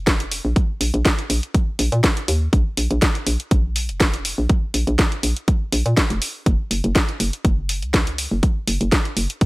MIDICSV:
0, 0, Header, 1, 3, 480
1, 0, Start_track
1, 0, Key_signature, -5, "minor"
1, 0, Tempo, 491803
1, 548, Time_signature, 4, 2, 24, 8
1, 9232, End_track
2, 0, Start_track
2, 0, Title_t, "FM bass"
2, 0, Program_c, 0, 39
2, 0, Note_on_c, 0, 29, 78
2, 397, Note_off_c, 0, 29, 0
2, 436, Note_on_c, 0, 34, 90
2, 526, Note_off_c, 0, 34, 0
2, 787, Note_on_c, 0, 34, 84
2, 892, Note_off_c, 0, 34, 0
2, 916, Note_on_c, 0, 34, 104
2, 1006, Note_off_c, 0, 34, 0
2, 1267, Note_on_c, 0, 34, 96
2, 1372, Note_off_c, 0, 34, 0
2, 1748, Note_on_c, 0, 34, 95
2, 1852, Note_off_c, 0, 34, 0
2, 1876, Note_on_c, 0, 46, 98
2, 1966, Note_off_c, 0, 46, 0
2, 2228, Note_on_c, 0, 39, 96
2, 2425, Note_off_c, 0, 39, 0
2, 2468, Note_on_c, 0, 34, 96
2, 2572, Note_off_c, 0, 34, 0
2, 2708, Note_on_c, 0, 34, 87
2, 2812, Note_off_c, 0, 34, 0
2, 2837, Note_on_c, 0, 34, 103
2, 2927, Note_off_c, 0, 34, 0
2, 3188, Note_on_c, 0, 34, 95
2, 3292, Note_off_c, 0, 34, 0
2, 3428, Note_on_c, 0, 34, 89
2, 3797, Note_on_c, 0, 29, 80
2, 3811, Note_off_c, 0, 34, 0
2, 4237, Note_off_c, 0, 29, 0
2, 4277, Note_on_c, 0, 34, 92
2, 4366, Note_off_c, 0, 34, 0
2, 4627, Note_on_c, 0, 34, 86
2, 4732, Note_off_c, 0, 34, 0
2, 4756, Note_on_c, 0, 34, 104
2, 4846, Note_off_c, 0, 34, 0
2, 5107, Note_on_c, 0, 34, 93
2, 5212, Note_off_c, 0, 34, 0
2, 5587, Note_on_c, 0, 34, 97
2, 5692, Note_off_c, 0, 34, 0
2, 5717, Note_on_c, 0, 46, 96
2, 5807, Note_off_c, 0, 46, 0
2, 5956, Note_on_c, 0, 29, 93
2, 6046, Note_off_c, 0, 29, 0
2, 6308, Note_on_c, 0, 30, 97
2, 6412, Note_off_c, 0, 30, 0
2, 6547, Note_on_c, 0, 30, 83
2, 6652, Note_off_c, 0, 30, 0
2, 6677, Note_on_c, 0, 30, 105
2, 6766, Note_off_c, 0, 30, 0
2, 7027, Note_on_c, 0, 30, 92
2, 7132, Note_off_c, 0, 30, 0
2, 7268, Note_on_c, 0, 30, 88
2, 7637, Note_on_c, 0, 37, 84
2, 7651, Note_off_c, 0, 30, 0
2, 8077, Note_off_c, 0, 37, 0
2, 8115, Note_on_c, 0, 30, 91
2, 8206, Note_off_c, 0, 30, 0
2, 8467, Note_on_c, 0, 30, 86
2, 8572, Note_off_c, 0, 30, 0
2, 8597, Note_on_c, 0, 30, 101
2, 8687, Note_off_c, 0, 30, 0
2, 8947, Note_on_c, 0, 30, 89
2, 9052, Note_off_c, 0, 30, 0
2, 9232, End_track
3, 0, Start_track
3, 0, Title_t, "Drums"
3, 67, Note_on_c, 9, 42, 75
3, 68, Note_on_c, 9, 36, 113
3, 71, Note_on_c, 9, 38, 114
3, 165, Note_off_c, 9, 36, 0
3, 165, Note_off_c, 9, 42, 0
3, 168, Note_off_c, 9, 38, 0
3, 196, Note_on_c, 9, 42, 53
3, 294, Note_off_c, 9, 42, 0
3, 308, Note_on_c, 9, 46, 87
3, 405, Note_off_c, 9, 46, 0
3, 548, Note_on_c, 9, 36, 115
3, 548, Note_on_c, 9, 42, 75
3, 645, Note_off_c, 9, 36, 0
3, 646, Note_off_c, 9, 42, 0
3, 788, Note_on_c, 9, 46, 104
3, 886, Note_off_c, 9, 46, 0
3, 917, Note_on_c, 9, 42, 36
3, 1015, Note_off_c, 9, 42, 0
3, 1028, Note_on_c, 9, 36, 117
3, 1028, Note_on_c, 9, 42, 77
3, 1031, Note_on_c, 9, 38, 123
3, 1125, Note_off_c, 9, 36, 0
3, 1125, Note_off_c, 9, 42, 0
3, 1129, Note_off_c, 9, 38, 0
3, 1157, Note_on_c, 9, 42, 36
3, 1255, Note_off_c, 9, 42, 0
3, 1268, Note_on_c, 9, 46, 89
3, 1365, Note_off_c, 9, 46, 0
3, 1397, Note_on_c, 9, 42, 51
3, 1495, Note_off_c, 9, 42, 0
3, 1508, Note_on_c, 9, 36, 112
3, 1508, Note_on_c, 9, 42, 75
3, 1605, Note_off_c, 9, 36, 0
3, 1606, Note_off_c, 9, 42, 0
3, 1747, Note_on_c, 9, 46, 100
3, 1845, Note_off_c, 9, 46, 0
3, 1877, Note_on_c, 9, 42, 35
3, 1974, Note_off_c, 9, 42, 0
3, 1988, Note_on_c, 9, 36, 119
3, 1988, Note_on_c, 9, 42, 76
3, 1991, Note_on_c, 9, 38, 119
3, 2085, Note_off_c, 9, 36, 0
3, 2085, Note_off_c, 9, 42, 0
3, 2089, Note_off_c, 9, 38, 0
3, 2117, Note_on_c, 9, 42, 52
3, 2214, Note_off_c, 9, 42, 0
3, 2227, Note_on_c, 9, 46, 94
3, 2325, Note_off_c, 9, 46, 0
3, 2468, Note_on_c, 9, 36, 121
3, 2468, Note_on_c, 9, 42, 71
3, 2565, Note_off_c, 9, 36, 0
3, 2565, Note_off_c, 9, 42, 0
3, 2707, Note_on_c, 9, 46, 104
3, 2805, Note_off_c, 9, 46, 0
3, 2836, Note_on_c, 9, 42, 34
3, 2934, Note_off_c, 9, 42, 0
3, 2947, Note_on_c, 9, 42, 75
3, 2948, Note_on_c, 9, 36, 125
3, 2950, Note_on_c, 9, 38, 117
3, 3044, Note_off_c, 9, 42, 0
3, 3046, Note_off_c, 9, 36, 0
3, 3048, Note_off_c, 9, 38, 0
3, 3076, Note_on_c, 9, 42, 35
3, 3174, Note_off_c, 9, 42, 0
3, 3187, Note_on_c, 9, 46, 89
3, 3285, Note_off_c, 9, 46, 0
3, 3317, Note_on_c, 9, 42, 49
3, 3414, Note_off_c, 9, 42, 0
3, 3428, Note_on_c, 9, 36, 117
3, 3428, Note_on_c, 9, 42, 73
3, 3525, Note_off_c, 9, 42, 0
3, 3526, Note_off_c, 9, 36, 0
3, 3668, Note_on_c, 9, 46, 104
3, 3765, Note_off_c, 9, 46, 0
3, 3797, Note_on_c, 9, 42, 35
3, 3895, Note_off_c, 9, 42, 0
3, 3907, Note_on_c, 9, 42, 74
3, 3908, Note_on_c, 9, 36, 122
3, 3911, Note_on_c, 9, 38, 117
3, 4005, Note_off_c, 9, 36, 0
3, 4005, Note_off_c, 9, 42, 0
3, 4008, Note_off_c, 9, 38, 0
3, 4036, Note_on_c, 9, 42, 50
3, 4134, Note_off_c, 9, 42, 0
3, 4147, Note_on_c, 9, 46, 91
3, 4245, Note_off_c, 9, 46, 0
3, 4387, Note_on_c, 9, 42, 71
3, 4388, Note_on_c, 9, 36, 117
3, 4485, Note_off_c, 9, 36, 0
3, 4485, Note_off_c, 9, 42, 0
3, 4627, Note_on_c, 9, 46, 99
3, 4725, Note_off_c, 9, 46, 0
3, 4757, Note_on_c, 9, 42, 34
3, 4854, Note_off_c, 9, 42, 0
3, 4867, Note_on_c, 9, 42, 75
3, 4868, Note_on_c, 9, 36, 119
3, 4871, Note_on_c, 9, 38, 113
3, 4965, Note_off_c, 9, 36, 0
3, 4965, Note_off_c, 9, 42, 0
3, 4968, Note_off_c, 9, 38, 0
3, 4997, Note_on_c, 9, 42, 33
3, 5094, Note_off_c, 9, 42, 0
3, 5107, Note_on_c, 9, 46, 92
3, 5205, Note_off_c, 9, 46, 0
3, 5237, Note_on_c, 9, 42, 48
3, 5334, Note_off_c, 9, 42, 0
3, 5347, Note_on_c, 9, 42, 74
3, 5348, Note_on_c, 9, 36, 117
3, 5445, Note_off_c, 9, 36, 0
3, 5445, Note_off_c, 9, 42, 0
3, 5587, Note_on_c, 9, 46, 99
3, 5685, Note_off_c, 9, 46, 0
3, 5717, Note_on_c, 9, 42, 35
3, 5814, Note_off_c, 9, 42, 0
3, 5828, Note_on_c, 9, 36, 114
3, 5828, Note_on_c, 9, 42, 70
3, 5831, Note_on_c, 9, 38, 113
3, 5925, Note_off_c, 9, 36, 0
3, 5925, Note_off_c, 9, 42, 0
3, 5929, Note_off_c, 9, 38, 0
3, 5957, Note_on_c, 9, 42, 49
3, 6055, Note_off_c, 9, 42, 0
3, 6068, Note_on_c, 9, 46, 92
3, 6165, Note_off_c, 9, 46, 0
3, 6308, Note_on_c, 9, 36, 113
3, 6308, Note_on_c, 9, 42, 73
3, 6405, Note_off_c, 9, 36, 0
3, 6405, Note_off_c, 9, 42, 0
3, 6548, Note_on_c, 9, 46, 102
3, 6645, Note_off_c, 9, 46, 0
3, 6677, Note_on_c, 9, 42, 34
3, 6774, Note_off_c, 9, 42, 0
3, 6788, Note_on_c, 9, 36, 120
3, 6788, Note_on_c, 9, 42, 75
3, 6791, Note_on_c, 9, 38, 112
3, 6885, Note_off_c, 9, 36, 0
3, 6885, Note_off_c, 9, 42, 0
3, 6889, Note_off_c, 9, 38, 0
3, 6916, Note_on_c, 9, 42, 34
3, 7014, Note_off_c, 9, 42, 0
3, 7027, Note_on_c, 9, 46, 86
3, 7125, Note_off_c, 9, 46, 0
3, 7157, Note_on_c, 9, 42, 49
3, 7254, Note_off_c, 9, 42, 0
3, 7268, Note_on_c, 9, 36, 118
3, 7268, Note_on_c, 9, 42, 72
3, 7365, Note_off_c, 9, 36, 0
3, 7365, Note_off_c, 9, 42, 0
3, 7507, Note_on_c, 9, 46, 99
3, 7605, Note_off_c, 9, 46, 0
3, 7637, Note_on_c, 9, 42, 33
3, 7735, Note_off_c, 9, 42, 0
3, 7747, Note_on_c, 9, 42, 72
3, 7748, Note_on_c, 9, 36, 114
3, 7750, Note_on_c, 9, 38, 108
3, 7844, Note_off_c, 9, 42, 0
3, 7845, Note_off_c, 9, 36, 0
3, 7848, Note_off_c, 9, 38, 0
3, 7876, Note_on_c, 9, 42, 50
3, 7974, Note_off_c, 9, 42, 0
3, 7987, Note_on_c, 9, 46, 87
3, 8085, Note_off_c, 9, 46, 0
3, 8227, Note_on_c, 9, 36, 111
3, 8227, Note_on_c, 9, 42, 74
3, 8325, Note_off_c, 9, 36, 0
3, 8325, Note_off_c, 9, 42, 0
3, 8467, Note_on_c, 9, 46, 101
3, 8564, Note_off_c, 9, 46, 0
3, 8596, Note_on_c, 9, 42, 35
3, 8694, Note_off_c, 9, 42, 0
3, 8707, Note_on_c, 9, 36, 117
3, 8707, Note_on_c, 9, 42, 80
3, 8710, Note_on_c, 9, 38, 111
3, 8804, Note_off_c, 9, 42, 0
3, 8805, Note_off_c, 9, 36, 0
3, 8808, Note_off_c, 9, 38, 0
3, 8836, Note_on_c, 9, 42, 37
3, 8934, Note_off_c, 9, 42, 0
3, 8947, Note_on_c, 9, 46, 86
3, 9044, Note_off_c, 9, 46, 0
3, 9076, Note_on_c, 9, 42, 51
3, 9173, Note_off_c, 9, 42, 0
3, 9186, Note_on_c, 9, 42, 76
3, 9187, Note_on_c, 9, 36, 113
3, 9232, Note_off_c, 9, 36, 0
3, 9232, Note_off_c, 9, 42, 0
3, 9232, End_track
0, 0, End_of_file